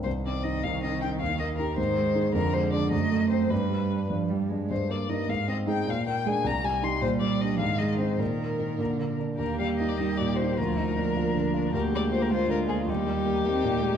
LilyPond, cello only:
\new Staff \with { instrumentName = "Cello" } { \clef bass \time 6/8 \key c \minor \tempo 4. = 104 ees2.~ | ees4. ees4. | d4. a4. | g4. f8 g8 aes8 |
\key ees \major r4 g8 r4 aes8 | r4 aes8 r4 g8 | g4. ees4. | ees4. d4 r8 |
bes4. g4. | f2. | bes4. aes4. | g4. c'8 bes8 aes8 | }